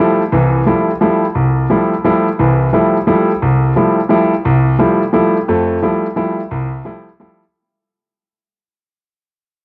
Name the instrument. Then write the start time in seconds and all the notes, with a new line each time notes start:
grand piano
Already playing: F3
0.00 G3 A3 E4
0.32 C2 E3
0.66 F3 G3 A3 E4
1.01 F3 G3 A3 E4
1.35 C2
1.70 F3 G3 A3 E4
2.04 F3 G3 A3 E4
2.39 C2 E3
2.73 F3 G3 A3 E4
3.07 F3 G3 A3 E4
3.42 C2
3.76 F3 G3 A3 E4
4.09 F3 G3 A3 E4
4.45 C2
4.79 F3 G3 A3 E4
5.13 F3 G3 A3 E4
5.48 F2 A3
5.82 F3 G3 A3 E4
6.16 F3 G3 A3 E4
6.51 C2
6.85 F3 G3 A3 E4
7.20 F3 G3 A3 E4